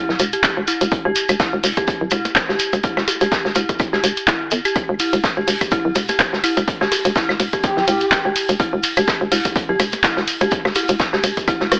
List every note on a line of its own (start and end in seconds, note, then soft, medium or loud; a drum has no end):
0.09 0.16 D1 medium
0.09 snare soft
0.19 0.36 E1 loud
0.19 closed hi-hat loud
0.19 closed hi-hat medium
0.19 shekere loud
0.33 0.37 G4 medium
0.33 closed hi-hat medium
0.33 shekere soft
0.43 kick loud
0.43 snare loud
0.43 clap loud
0.43 closed hi-hat soft
0.43 closed hi-hat medium
0.43 claves medium
0.43 shekere soft
0.57 0.64 E1 medium
0.67 0.72 E4 medium
0.67 closed hi-hat medium
0.67 closed hi-hat loud
0.67 shekere medium
0.81 0.88 E1 medium
0.81 closed hi-hat medium
0.81 shekere medium
0.91 kick loud
0.91 closed hi-hat soft
0.91 closed hi-hat medium
0.91 shekere soft
1.05 1.12 E1 loud
1.05 1.09 G4 medium
1.15 closed hi-hat medium
1.15 closed hi-hat loud
1.15 shekere loud
1.29 1.36 E1 medium
1.29 closed hi-hat medium
1.29 claves medium
1.29 shekere medium
1.39 1.44 E4 medium
1.39 kick loud
1.39 snare loud
1.39 closed hi-hat medium
1.39 closed hi-hat soft
1.39 shekere soft
1.53 1.60 E1 medium
1.63 1.72 E1 medium
1.63 closed hi-hat loud
1.63 open hi-hat medium
1.63 shekere loud
1.77 1.81 G4 medium
1.77 kick medium
1.77 closed hi-hat medium
1.77 percussion blips medium
1.77 shekere medium
1.87 kick loud
1.87 closed hi-hat soft
1.87 closed hi-hat medium
1.87 shekere soft
2.01 2.08 D1 medium
2.11 2.28 E1 loud
2.11 2.16 E4 medium
2.11 closed hi-hat medium
2.11 closed hi-hat loud
2.11 percussion blips medium
2.11 claves medium
2.11 shekere medium
2.25 closed hi-hat medium
2.25 percussion blips loud
2.25 shekere medium
2.35 kick loud
2.35 snare loud
2.35 clap loud
2.35 closed hi-hat soft
2.35 closed hi-hat medium
2.35 shekere soft
2.49 2.56 E1 medium
2.49 2.53 G4 medium
2.49 snare medium
2.59 closed hi-hat medium
2.59 closed hi-hat loud
2.59 shekere loud
2.73 2.80 E1 medium
2.73 closed hi-hat medium
2.73 percussion blips loud
2.73 shekere medium
2.83 2.88 E4 medium
2.83 kick loud
2.83 closed hi-hat medium
2.83 closed hi-hat soft
2.83 shekere soft
2.97 3.04 E1 loud
2.97 snare medium
2.97 percussion blips medium
2.97 claves medium
3.08 closed hi-hat loud
3.08 closed hi-hat medium
3.08 percussion blips medium
3.08 shekere loud
3.21 3.28 E1 medium
3.21 3.25 G4 medium
3.21 closed hi-hat soft
3.21 shekere medium
3.32 kick loud
3.32 snare loud
3.32 closed hi-hat soft
3.32 closed hi-hat medium
3.32 shekere soft
3.45 3.52 E1 medium
3.45 snare medium
3.55 3.64 E1 medium
3.55 3.60 E4 medium
3.55 closed hi-hat medium
3.55 closed hi-hat loud
3.55 percussion blips medium
3.55 shekere medium
3.69 kick medium
3.69 closed hi-hat medium
3.69 percussion blips medium
3.69 shekere medium
3.79 kick loud
3.79 closed hi-hat medium
3.79 closed hi-hat soft
3.79 claves medium
3.79 shekere soft
3.93 4.00 E1 medium
3.93 3.97 G4 medium
3.93 snare soft
4.03 4.12 E1 medium
4.03 closed hi-hat medium
4.03 closed hi-hat loud
4.03 shekere loud
4.17 closed hi-hat medium
4.17 shekere medium
4.27 4.32 E4 medium
4.27 kick loud
4.27 snare loud
4.27 clap loud
4.27 closed hi-hat medium
4.27 closed hi-hat soft
4.27 shekere soft
4.51 4.60 G1 medium
4.51 closed hi-hat medium
4.51 closed hi-hat loud
4.51 shekere medium
4.65 4.69 G4 medium
4.65 closed hi-hat soft
4.65 claves medium
4.65 shekere medium
4.76 kick loud
4.76 closed hi-hat medium
4.76 closed hi-hat soft
4.76 claves medium
4.76 shekere soft
4.89 4.96 E1 loud
4.99 5.04 E4 medium
4.99 closed hi-hat medium
4.99 closed hi-hat loud
4.99 ride medium
4.99 shekere medium
5.13 5.20 E1 medium
5.13 closed hi-hat soft
5.13 shekere soft
5.24 kick loud
5.24 snare loud
5.24 closed hi-hat soft
5.24 closed hi-hat medium
5.24 shekere soft
5.37 5.44 E1 medium
5.37 5.41 G4 medium
5.47 5.56 E1 medium
5.47 closed hi-hat medium
5.47 open hi-hat medium
5.47 ride medium
5.47 shekere medium
5.61 kick medium
5.61 closed hi-hat medium
5.61 percussion blips medium
5.61 claves medium
5.61 shekere medium
5.71 5.76 E4 medium
5.71 kick loud
5.71 closed hi-hat medium
5.71 closed hi-hat soft
5.71 shekere soft
5.85 5.92 D1 medium
5.95 6.12 E1 loud
5.95 closed hi-hat loud
5.95 closed hi-hat medium
5.95 ride medium
5.95 percussion blips medium
5.95 shekere loud
6.08 6.13 G4 medium
6.08 closed hi-hat medium
6.08 percussion blips medium
6.08 shekere medium
6.19 kick loud
6.19 snare loud
6.19 clap loud
6.19 closed hi-hat medium
6.19 closed hi-hat soft
6.19 shekere soft
6.33 6.40 E1 medium
6.33 snare medium
6.44 6.48 E4 medium
6.44 closed hi-hat loud
6.44 closed hi-hat medium
6.44 ride medium
6.44 claves medium
6.44 shekere medium
6.57 6.64 E1 medium
6.57 closed hi-hat medium
6.57 percussion blips medium
6.57 shekere medium
6.68 kick loud
6.68 closed hi-hat soft
6.68 closed hi-hat medium
6.68 shekere soft
6.81 6.88 E1 loud
6.81 6.85 G4 medium
6.81 snare medium
6.81 percussion blips medium
6.92 closed hi-hat medium
6.92 ride medium
6.92 percussion blips medium
6.92 shekere medium
7.04 7.12 E1 loud
7.04 closed hi-hat soft
7.04 closed hi-hat medium
7.04 shekere soft
7.16 7.20 E4 medium
7.16 kick loud
7.16 snare loud
7.16 closed hi-hat soft
7.16 closed hi-hat medium
7.16 shekere soft
7.29 7.36 E1 medium
7.29 snare soft
7.29 claves medium
7.40 7.48 E1 medium
7.40 closed hi-hat medium
7.40 ride medium
7.40 percussion blips medium
7.40 shekere medium
7.53 7.57 G4 medium
7.53 kick medium
7.53 closed hi-hat medium
7.53 percussion blips medium
7.53 shekere soft
7.63 8.31 G4 loud
7.63 kick loud
7.63 closed hi-hat medium
7.63 closed hi-hat soft
7.63 shekere soft
7.77 7.84 D1 medium
7.77 snare soft
7.87 8.04 E1 loud
7.87 7.92 E4 medium
7.87 closed hi-hat medium
7.87 ride medium
7.87 shekere medium
8.00 closed hi-hat medium
8.00 shekere medium
8.11 kick loud
8.11 snare loud
8.11 clap loud
8.11 closed hi-hat medium
8.11 closed hi-hat soft
8.11 claves medium
8.11 shekere soft
8.25 8.32 E1 medium
8.25 8.29 G4 medium
8.36 closed hi-hat medium
8.36 ride medium
8.36 shekere medium
8.49 8.56 E1 medium
8.49 closed hi-hat medium
8.49 shekere medium
8.59 8.64 E4 medium
8.59 kick loud
8.59 closed hi-hat soft
8.59 closed hi-hat medium
8.59 shekere soft
8.73 8.80 E1 loud
8.83 closed hi-hat medium
8.83 ride medium
8.83 shekere medium
8.97 9.04 E1 medium
8.97 9.01 G4 medium
8.97 closed hi-hat medium
8.97 claves medium
8.97 shekere soft
9.07 kick loud
9.07 snare loud
9.07 closed hi-hat medium
9.07 closed hi-hat soft
9.07 shekere soft
9.21 9.28 E1 medium
9.32 9.40 E1 medium
9.32 9.36 E4 medium
9.32 closed hi-hat medium
9.32 open hi-hat medium
9.32 ride medium
9.32 shekere medium
9.45 kick medium
9.45 closed hi-hat medium
9.45 closed hi-hat soft
9.45 percussion blips medium
9.45 shekere medium
9.56 kick loud
9.56 closed hi-hat soft
9.56 closed hi-hat loud
9.56 shekere soft
9.69 9.76 D1 medium
9.69 9.73 G4 medium
9.80 9.96 E1 medium
9.80 closed hi-hat medium
9.80 ride medium
9.80 percussion blips medium
9.80 claves medium
9.80 shekere medium
9.92 closed hi-hat medium
9.92 percussion blips medium
9.92 shekere soft
10.04 10.08 E4 medium
10.04 kick loud
10.04 snare loud
10.04 clap loud
10.04 closed hi-hat soft
10.04 closed hi-hat medium
10.04 shekere soft
10.17 10.24 E1 medium
10.17 snare medium
10.27 closed hi-hat medium
10.27 ride medium
10.27 shekere medium
10.41 10.48 E1 medium
10.41 10.45 G4 medium
10.41 closed hi-hat medium
10.41 percussion blips loud
10.41 shekere soft
10.51 kick loud
10.51 closed hi-hat medium
10.51 closed hi-hat soft
10.51 shekere soft
10.65 10.72 E1 loud
10.65 snare medium
10.65 percussion blips medium
10.65 claves medium
10.75 10.80 E4 medium
10.75 closed hi-hat medium
10.75 ride medium
10.75 percussion blips medium
10.75 shekere medium
10.88 10.96 E1 medium
10.88 closed hi-hat soft
10.88 closed hi-hat medium
10.88 ride medium
10.88 shekere soft
10.99 kick loud
10.99 snare loud
10.99 closed hi-hat soft
10.99 closed hi-hat medium
10.99 shekere soft
11.13 11.20 E1 medium
11.13 11.17 G4 medium
11.13 snare medium
11.24 11.32 E1 loud
11.24 closed hi-hat medium
11.24 ride medium
11.24 percussion blips loud
11.24 shekere medium
11.37 kick medium
11.37 closed hi-hat medium
11.37 percussion blips medium
11.37 shekere soft
11.48 11.52 E4 medium
11.48 kick loud
11.48 closed hi-hat soft
11.48 closed hi-hat loud
11.48 claves medium
11.48 shekere soft
11.60 11.68 E1 medium
11.60 snare soft
11.72 11.80 E1 medium
11.72 cross-stick medium
11.72 closed hi-hat medium
11.72 ride medium
11.72 shekere medium